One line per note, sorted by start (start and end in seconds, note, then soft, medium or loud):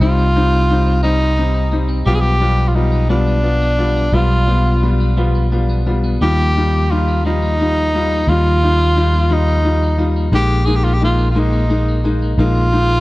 0.00 2.02 C2 loud
0.00 0.40 D#3 medium
0.00 0.27 G3 medium
0.00 0.27 C4 medium
0.00 0.17 C4 medium
0.00 0.35 D#4 medium
0.00 0.27 D#4 medium
0.00 1.00 F4 loud
0.19 0.52 C4 medium
0.36 0.62 G3 medium
0.36 0.62 C4 medium
0.36 0.69 D#4 medium
0.36 0.62 D#4 medium
0.53 0.85 C4 medium
0.70 0.96 G3 medium
0.70 0.96 C4 medium
0.70 1.36 D#4 medium
0.70 0.96 D#4 medium
0.87 1.02 C4 medium
1.02 1.30 G3 medium
1.02 1.19 C4 medium
1.02 1.30 C4 medium
1.02 1.76 D#4 loud
1.02 1.30 D#4 medium
1.20 1.53 C4 medium
1.37 1.64 G3 medium
1.37 1.64 C4 medium
1.37 1.71 D#4 medium
1.37 1.65 D#4 medium
1.54 1.88 C4 medium
1.72 1.98 G3 medium
1.72 1.98 C4 medium
1.72 2.13 D#4 medium
1.72 1.98 D#4 medium
1.89 2.13 C4 medium
2.06 4.09 B1 loud
2.06 3.09 F3 medium
2.06 2.32 G3 medium
2.06 2.33 B3 medium
2.06 2.33 F4 loud
2.06 2.16 G4 loud
2.14 2.21 G#4 medium
2.20 2.56 B3 medium
2.20 2.70 G4 loud
2.40 2.67 G3 medium
2.40 2.67 B3 medium
2.40 2.75 D4 medium
2.40 2.67 F4 medium
2.57 2.91 B3 medium
2.68 2.76 F4 medium
2.75 3.01 G3 medium
2.75 3.01 B3 medium
2.75 3.09 D#4 medium
2.75 3.02 F4 medium
2.92 3.26 B3 medium
3.09 4.13 F3 medium
3.09 3.36 G3 medium
3.09 3.35 B3 medium
3.09 4.16 D4 loud
3.09 3.36 F4 medium
3.27 3.61 B3 medium
3.43 3.70 B3 medium
3.43 3.78 D4 medium
3.43 3.70 F4 medium
3.62 3.95 B3 medium
3.78 4.04 G3 medium
3.78 4.05 B3 medium
3.78 4.47 D4 medium
3.78 4.05 F4 medium
3.96 4.30 B3 medium
4.12 6.17 B1 medium
4.12 5.17 F3 medium
4.12 4.39 G3 medium
4.12 4.39 B3 medium
4.12 4.39 F4 loud
4.12 4.91 F4 medium
4.31 4.65 B3 medium
4.47 4.73 G3 medium
4.47 4.74 B3 medium
4.47 4.82 D4 medium
4.47 4.74 F4 medium
4.66 4.99 B3 medium
4.83 5.09 G3 medium
4.83 5.09 B3 medium
4.83 5.51 D4 medium
4.83 5.09 F4 medium
5.00 5.34 B3 medium
5.17 6.21 F3 medium
5.17 5.43 G3 medium
5.17 5.43 B3 medium
5.17 5.44 F4 medium
5.35 5.68 B3 medium
5.52 5.78 G3 medium
5.52 5.78 B3 medium
5.52 5.85 D4 medium
5.52 5.78 F4 medium
5.69 6.03 B3 medium
5.86 6.13 G3 medium
5.86 6.13 B3 medium
5.86 6.28 D4 medium
5.86 6.13 F4 medium
6.04 6.28 B3 medium
6.21 8.24 D#2 medium
6.21 7.25 F3 medium
6.21 6.48 G3 medium
6.21 6.48 D#4 medium
6.21 6.48 F4 medium
6.21 6.92 G4 loud
6.38 6.72 A#3 medium
6.55 6.83 G3 medium
6.55 6.91 D#4 medium
6.55 6.83 D#4 medium
6.55 6.83 F4 medium
6.73 7.08 A#3 medium
6.91 7.17 G3 medium
6.91 7.59 D#4 medium
6.91 7.17 D#4 medium
6.91 7.25 F4 medium
6.91 7.17 F4 medium
7.08 7.42 A#3 medium
7.25 8.29 F3 medium
7.25 7.51 G3 medium
7.25 8.30 D#4 loud
7.25 7.51 D#4 medium
7.25 7.52 F4 medium
7.42 7.77 A#3 medium
7.60 7.86 G3 medium
7.60 7.95 D#4 medium
7.60 7.86 D#4 medium
7.60 7.86 F4 medium
7.77 8.11 A#3 medium
7.95 8.20 G3 medium
7.95 8.63 D#4 medium
7.95 8.20 D#4 medium
7.95 8.20 F4 medium
8.12 8.46 A#3 medium
8.27 10.28 D#2 loud
8.27 9.30 F3 medium
8.27 8.54 G3 medium
8.27 8.54 D#4 medium
8.27 9.34 F4 loud
8.27 8.55 F4 loud
8.46 8.80 A#3 medium
8.63 8.88 G3 medium
8.63 8.97 D#4 medium
8.63 8.89 D#4 medium
8.63 8.89 F4 medium
8.80 9.14 A#3 medium
8.96 9.22 G3 medium
8.96 9.22 D#4 medium
8.96 9.65 D#4 medium
8.96 9.22 F4 medium
9.14 9.48 A#3 medium
9.30 10.33 F3 medium
9.30 9.56 G3 medium
9.30 9.56 D#4 medium
9.30 10.08 D#4 medium
9.30 9.56 F4 loud
9.48 9.82 A#3 medium
9.64 9.90 G3 medium
9.64 9.90 D#4 medium
9.64 9.99 D#4 medium
9.64 9.90 F4 medium
9.83 10.16 A#3 medium
9.98 10.24 G3 medium
9.98 10.24 D#4 medium
9.98 10.66 D#4 medium
9.98 10.24 F4 medium
10.16 10.50 A#3 medium
10.32 12.34 A#1 loud
10.32 11.34 F3 medium
10.32 10.58 G#3 medium
10.32 10.58 A#3 medium
10.32 10.58 D#4 loud
10.32 10.67 G4 loud
10.50 10.83 A#3 medium
10.65 10.92 G#3 medium
10.65 10.93 A#3 medium
10.65 11.00 D#4 medium
10.65 10.93 D#4 medium
10.65 10.77 G#4 medium
10.75 10.86 G4 medium
10.84 11.17 A#3 medium
10.84 10.95 F4 medium
10.94 11.02 G4 medium
11.01 11.27 G#3 medium
11.01 11.27 A#3 medium
11.01 11.70 D#4 medium
11.01 11.27 D#4 medium
11.01 11.28 F4 medium
11.19 11.51 A#3 medium
11.31 11.40 F4 medium
11.35 12.38 F3 medium
11.35 11.61 G#3 medium
11.35 11.61 A#3 medium
11.35 11.61 D#4 medium
11.35 12.06 D#4 medium
11.53 11.87 A#3 medium
11.69 11.95 G#3 medium
11.69 11.96 A#3 medium
11.69 11.96 D#4 medium
11.69 12.05 D#4 medium
11.88 12.21 A#3 medium
12.04 12.30 G#3 medium
12.04 12.30 A#3 medium
12.04 12.30 D#4 medium
12.04 12.72 D#4 medium
12.22 12.54 A#3 medium
12.38 13.00 A#1 loud
12.38 13.00 F3 medium
12.38 12.64 G#3 medium
12.38 12.64 A#3 medium
12.38 12.65 D#4 loud
12.38 13.00 F4 loud
12.55 12.88 A#3 medium
12.72 12.98 G#3 medium
12.72 12.99 A#3 medium
12.72 13.00 D#4 medium
12.72 12.99 D#4 medium
12.89 13.00 A#3 medium